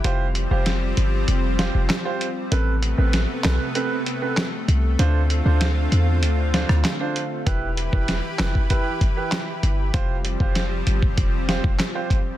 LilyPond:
<<
  \new Staff \with { instrumentName = "Grand piano" } { \time 4/4 \key f \lydian \tempo 4 = 97 <f' g' c''>16 r8 <f' g' c''>16 r4. <f' g' c''>16 r8 <f' g' c''>16 r8 | <c' a' b'>16 r8 <c' a' b'>16 r8 <c' a' b'>16 r16 <c' a' b'>16 r8 <c' a' b'>16 r4 | <d' f' c''>16 r8 <d' f' c''>16 r4. <d' f' c''>16 r8 <d' f' c''>16 r8 | <e' g' b'>16 r8 <e' g' b'>16 r8 <e' g' b'>16 r16 <e' g' b'>16 r8 <e' g' b'>16 r4 |
<f' g' c''>16 r8 <f' g' c''>16 r4. <f' g' c''>16 r8 <f' g' c''>16 r8 | }
  \new Staff \with { instrumentName = "Analog synth pad" } { \time 4/4 \key f \lydian <f g c'>1 | <c a b>1 | <d c' f'>1 | <e e' g' b'>1 |
<f g c'>1 | }
  \new Staff \with { instrumentName = "808-style bass" } { \clef bass \time 4/4 \key f \lydian f,,8. f,,8. g,,8 f,,8. f,,16 r4 | a,,8. a,,8 r16 b,,16 r4. r16 c,8 | d,8. d,8. e,8 d,8. d,16 r4 | e,,8. e,,8 r16 f,,16 r4. r16 g,,8 |
f,,8. f,,8. g,,8 f,,8. f,,16 r4 | }
  \new DrumStaff \with { instrumentName = "Drums" } \drummode { \time 4/4 hh8 hh8 <hh sn>8 hh8 hh8 <hh sn>8 <hc hh sn>8 hh8 | hh8 hh8 <hh sn>8 <hc hh sn>8 hh8 hh8 <hc hh sn>8 hh8 | hh8 hh8 <hh sn>8 hh8 hh8 <hh sn>16 ss16 <hc hh sn>8 hh8 | <hh bd>8 hh16 bd16 <hh sn>8 <hc hh sn>16 bd16 <hh bd>8 <hh bd>8 <hc hh sn>8 hh8 |
<hh bd>8 hh16 bd16 <hh sn>8 hh16 bd16 <hh bd>8 <hh sn>16 bd16 <hc hh sn>8 <hh bd>8 | }
>>